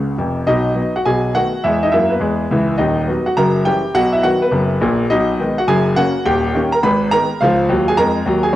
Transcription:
0.00 0.14 C#2 medium
0.00 0.15 C#3 medium
0.00 0.15 F#5 medium
0.00 0.15 C#6 medium
0.00 0.18 F#6 medium
0.18 0.42 F1 medium
0.18 0.42 F2 medium
0.47 0.72 B1 medium
0.47 0.72 B2 medium
0.47 0.92 D#4 medium
0.47 0.96 D#5 medium
0.75 0.92 F#3 medium
0.75 0.92 B3 medium
0.96 1.06 F#4 medium
0.96 1.06 F#5 medium
1.05 1.30 B1 medium
1.05 1.31 B2 medium
1.05 1.33 G#4 medium
1.05 1.35 G#5 medium
1.35 1.51 D#3 medium
1.35 1.51 A3 soft
1.35 1.51 B3 medium
1.35 1.62 F#4 medium
1.35 1.64 F#5 loud
1.64 1.87 E2 medium
1.64 1.88 G#3 medium
1.64 1.82 E4 medium
1.64 1.83 E5 medium
1.83 1.93 D#4 medium
1.83 1.93 D#5 medium
1.92 2.16 F#2 medium
1.92 2.16 A#3 medium
1.92 2.11 E4 medium
1.92 2.11 E5 medium
2.10 2.75 B3 medium
2.10 2.78 B4 medium
2.20 2.44 E2 medium
2.20 2.44 G#3 medium
2.51 2.74 C#2 medium
2.51 2.75 E3 medium
2.78 3.03 D#1 medium
2.78 3.03 D#2 medium
2.78 3.23 D#4 medium
2.78 3.26 D#5 medium
3.07 3.24 F#3 medium
3.07 3.23 B3 medium
3.26 3.36 F#4 medium
3.26 3.36 F#5 medium
3.37 3.61 F#1 medium
3.37 3.61 F#2 loud
3.37 3.64 A#4 medium
3.37 3.66 A#5 loud
3.65 3.81 E3 medium
3.65 3.81 G3 medium
3.65 3.82 C#4 medium
3.65 3.93 G4 medium
3.65 3.94 G5 loud
3.95 4.20 B1 medium
3.95 4.19 B2 medium
3.95 4.13 F#4 medium
3.95 4.14 F#5 loud
4.12 4.23 E4 medium
4.12 4.23 E5 medium
4.23 4.39 D#3 medium
4.23 4.39 F#3 medium
4.23 4.40 B3 medium
4.23 4.42 F#4 medium
4.23 4.42 F#5 loud
4.42 5.06 B3 medium
4.42 5.10 B4 medium
4.51 4.76 F#1 medium
4.51 4.77 F#2 medium
4.81 5.04 A#1 medium
4.81 5.05 A#2 medium
5.10 5.35 B1 medium
5.10 5.35 B2 medium
5.10 5.55 D#4 medium
5.10 5.58 D#5 loud
5.40 5.56 D#3 medium
5.40 5.56 G#3 medium
5.40 5.56 B3 medium
5.58 5.68 F#4 medium
5.58 5.68 F#5 medium
5.68 5.92 F#1 medium
5.68 5.92 F#2 loud
5.68 5.95 G#4 medium
5.68 5.96 G#5 loud
5.96 6.12 C#3 medium
5.96 6.13 A#3 medium
5.96 6.13 C#4 medium
5.96 6.24 F#4 medium
5.96 6.25 F#5 loud
6.25 6.50 D#1 medium
6.25 6.50 D#2 loud
6.25 6.70 G4 medium
6.25 6.73 G5 loud
6.55 6.71 D#3 medium
6.55 6.71 A#3 medium
6.55 6.71 C#4 medium
6.72 6.83 A#4 medium
6.72 6.82 A#5 medium
6.83 7.07 G#1 medium
6.83 7.07 G#2 medium
6.83 7.10 B4 medium
6.83 7.12 B5 loud
7.11 7.28 D#3 medium
7.11 7.28 G#3 medium
7.11 7.28 B3 medium
7.11 7.39 A#4 medium
7.11 7.40 A#5 loud
7.41 7.64 C#2 medium
7.41 7.66 F3 loud
7.41 7.86 F4 medium
7.41 7.88 F5 loud
7.69 7.92 D#2 medium
7.69 7.92 F#3 medium
7.88 7.98 G#4 medium
7.88 7.98 G#5 loud
7.97 8.21 F2 medium
7.97 8.22 G#3 medium
7.97 8.43 A#4 medium
7.97 8.45 A#5 loud
8.26 8.49 D#2 medium
8.26 8.50 F#3 medium
8.43 8.54 G#4 medium
8.43 8.54 G#5 medium

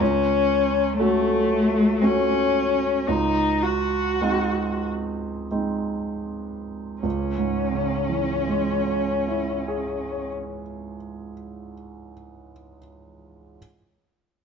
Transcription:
0.00 0.96 C#2 soft
0.00 0.98 C#4 medium
0.99 2.03 A3 medium
0.99 1.98 A3 soft
0.99 1.98 C#4 soft
0.99 1.98 F#4 soft
2.02 3.04 A3 soft
2.02 3.09 C#4 medium
2.02 3.04 C#4 soft
2.02 3.04 F#4 soft
3.08 4.18 C#2 soft
3.08 3.65 D#4 medium
3.63 4.84 F#4 soft
4.21 5.47 G#3 soft
4.21 5.47 C4 soft
4.21 5.48 D#4 soft
5.51 7.00 G#3 soft
5.51 7.00 C4 soft
5.51 7.00 D#4 soft
7.02 10.27 C#2 soft
7.02 10.26 C#4 soft
7.38 10.62 G#2 soft
7.72 10.96 C#3 soft
8.09 11.33 E3 soft
8.48 11.72 G#3 soft
8.86 12.11 C#4 soft
9.28 12.52 E4 soft
9.68 12.77 G#4 soft
10.12 12.78 C#5 soft

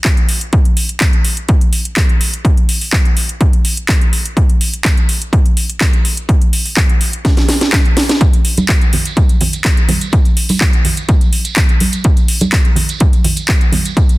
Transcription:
0.04 kick loud
0.04 clap loud
0.04 closed hi-hat medium
0.17 closed hi-hat soft
0.29 open hi-hat loud
0.41 closed hi-hat soft
0.53 kick loud
0.53 closed hi-hat medium
0.65 closed hi-hat soft
0.77 open hi-hat loud
0.89 closed hi-hat soft
1.00 kick loud
1.00 clap loud
1.00 closed hi-hat medium
1.13 closed hi-hat soft
1.25 open hi-hat loud
1.37 closed hi-hat soft
1.49 kick loud
1.49 closed hi-hat medium
1.61 closed hi-hat soft
1.73 open hi-hat loud
1.85 closed hi-hat medium
1.97 kick loud
1.97 clap loud
1.97 closed hi-hat medium
2.09 closed hi-hat soft
2.21 open hi-hat loud
2.34 closed hi-hat soft
2.45 kick loud
2.45 closed hi-hat medium
2.57 closed hi-hat soft
2.69 open hi-hat loud
2.81 open hi-hat medium
2.93 kick loud
2.93 clap loud
3.05 closed hi-hat soft
3.17 open hi-hat loud
3.29 closed hi-hat soft
3.41 kick loud
3.41 closed hi-hat medium
3.53 closed hi-hat soft
3.65 open hi-hat loud
3.77 closed hi-hat medium
3.89 kick loud
3.89 clap loud
3.89 closed hi-hat medium
4.01 closed hi-hat soft
4.13 open hi-hat loud
4.25 closed hi-hat soft
4.37 kick loud
4.37 closed hi-hat medium
4.50 closed hi-hat soft
4.61 open hi-hat loud
4.74 closed hi-hat medium
4.85 kick loud
4.85 clap loud
4.85 closed hi-hat medium
4.97 closed hi-hat soft
5.09 open hi-hat loud
5.22 closed hi-hat medium
5.33 kick loud
5.33 closed hi-hat medium
5.46 closed hi-hat soft
5.57 open hi-hat loud
5.70 closed hi-hat medium
5.81 kick loud
5.81 clap loud
5.81 closed hi-hat medium
5.93 closed hi-hat soft
6.05 open hi-hat loud
6.17 closed hi-hat medium
6.29 kick loud
6.29 closed hi-hat medium
6.42 closed hi-hat soft
6.53 open hi-hat loud
6.66 open hi-hat medium
6.77 kick loud
6.77 clap loud
6.77 closed hi-hat medium
6.89 closed hi-hat soft
7.01 open hi-hat loud
7.13 closed hi-hat medium
7.25 kick loud
7.25 snare medium
7.25 closed hi-hat medium
7.37 snare medium
7.37 closed hi-hat soft
7.49 snare medium
7.49 open hi-hat loud
7.61 snare medium
7.61 closed hi-hat medium
7.73 kick loud
7.73 snare medium
7.73 clap loud
7.73 closed hi-hat medium
7.85 closed hi-hat soft
7.97 snare loud
7.97 open hi-hat loud
8.09 snare medium
8.09 closed hi-hat medium
8.21 kick loud
8.21 closed hi-hat medium
8.21 tambourine medium
8.33 closed hi-hat soft
8.33 tambourine soft
8.45 open hi-hat loud
8.57 closed hi-hat medium
8.57 tambourine medium
8.57 high conga medium
8.69 kick loud
8.69 clap loud
8.69 closed hi-hat medium
8.81 closed hi-hat soft
8.81 tambourine soft
8.93 open hi-hat loud
8.93 low conga medium
9.05 closed hi-hat medium
9.05 tambourine medium
9.17 kick loud
9.17 closed hi-hat medium
9.17 tambourine medium
9.17 high conga medium
9.29 closed hi-hat soft
9.29 tambourine soft
9.41 open hi-hat loud
9.41 low conga medium
9.53 closed hi-hat medium
9.53 tambourine medium
9.65 kick loud
9.65 clap loud
9.65 closed hi-hat medium
9.77 closed hi-hat soft
9.77 tambourine soft
9.88 open hi-hat loud
9.88 high conga medium
9.88 low conga medium
10.01 closed hi-hat medium
10.01 tambourine medium
10.12 kick loud
10.12 closed hi-hat medium
10.12 tambourine medium
10.25 closed hi-hat soft
10.25 tambourine soft
10.37 open hi-hat loud
10.49 open hi-hat medium
10.49 tambourine medium
10.49 high conga medium
10.61 kick loud
10.61 clap loud
10.61 closed hi-hat medium
10.61 tambourine medium
10.73 closed hi-hat soft
10.73 tambourine soft
10.85 open hi-hat loud
10.85 low conga medium
10.97 closed hi-hat medium
10.97 tambourine medium
11.08 kick loud
11.08 closed hi-hat medium
11.08 tambourine medium
11.08 high conga medium
11.21 closed hi-hat soft
11.21 tambourine soft
11.33 open hi-hat loud
11.45 closed hi-hat medium
11.45 tambourine medium
11.56 kick loud
11.56 clap loud
11.56 closed hi-hat medium
11.69 closed hi-hat soft
11.69 tambourine soft
11.80 open hi-hat loud
11.80 high conga loud
11.92 closed hi-hat medium
11.92 tambourine medium
12.04 kick loud
12.04 closed hi-hat medium
12.17 closed hi-hat soft
12.17 tambourine soft
12.28 open hi-hat loud
12.41 closed hi-hat soft
12.41 tambourine medium
12.41 high conga loud
12.52 kick loud
12.52 clap loud
12.52 closed hi-hat medium
12.65 closed hi-hat soft
12.65 tambourine soft
12.76 open hi-hat loud
12.76 low conga medium
12.89 closed hi-hat soft
12.89 tambourine medium
13.00 kick loud
13.00 closed hi-hat medium
13.00 tambourine medium
13.00 high conga medium
13.13 closed hi-hat soft
13.13 tambourine soft
13.24 open hi-hat loud
13.24 low conga medium
13.36 closed hi-hat medium
13.36 tambourine medium
13.48 kick loud
13.48 clap loud
13.48 closed hi-hat medium
13.61 closed hi-hat soft
13.61 tambourine soft
13.72 open hi-hat loud
13.72 high conga medium
13.72 low conga medium
13.85 closed hi-hat soft
13.85 tambourine medium
13.97 kick loud
13.97 closed hi-hat medium
14.09 closed hi-hat soft
14.09 tambourine soft

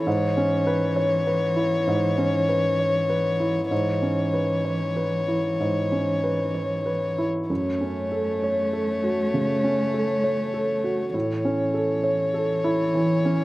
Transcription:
0.06 1.83 G#2 soft
0.06 3.67 E3 medium
0.06 3.67 C#5 soft
0.37 0.85 C#4 soft
0.67 1.15 B4 soft
0.96 1.44 C#5 soft
1.27 1.75 B4 soft
1.56 2.05 E4 soft
1.87 3.67 G#2 soft
2.18 2.67 C#4 soft
2.49 2.98 B4 soft
2.79 3.28 C#5 soft
3.09 3.59 B4 soft
3.40 3.90 E4 soft
3.71 5.56 G#2 soft
3.71 7.25 E3 soft
3.71 7.25 C#5 soft
4.02 4.53 C#4 soft
4.34 4.84 B4 soft
4.65 5.16 C#5 soft
4.97 5.47 B4 soft
5.28 5.79 E4 soft
5.60 7.46 G#2 soft
5.92 6.43 C#4 soft
6.24 6.74 B4 soft
6.55 7.06 C#5 soft
6.86 7.37 B4 soft
7.18 7.50 E4 soft
7.49 9.30 F#2 soft
7.49 11.10 A3 soft
7.49 11.10 C#5 soft
7.81 8.30 C#4 soft
8.12 8.61 A4 soft
8.43 8.92 C#5 soft
8.73 9.21 A4 soft
9.04 9.52 F#4 soft
9.34 9.82 C#3 soft
9.64 10.12 C#4 soft
9.94 10.42 A4 soft
10.24 10.72 C#5 soft
10.54 11.02 A4 soft
10.84 11.14 F#4 soft
11.14 12.90 A2 soft
11.14 13.44 E3 soft
11.14 13.44 C#5 soft
11.45 11.92 C#4 soft
11.74 12.22 A4 soft
12.04 12.52 C#5 soft
12.34 12.82 A4 soft
12.64 13.13 E4 soft
12.94 13.43 E3 soft
13.25 13.44 C#4 soft

